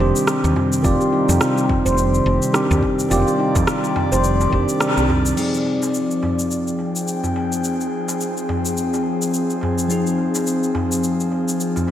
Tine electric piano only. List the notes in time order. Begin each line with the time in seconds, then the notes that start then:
Already playing: D#3 D5
0.00 C4 D4 G4
0.82 D#3 C4 G4 D5
2.54 D#3 C4 D4 G4
3.09 D#3 C4 D5
3.13 G4
4.50 D#3 C4 D4 G4
5.35 F3 C4 D#4 G#4
9.88 F3 C4 D#4 G#4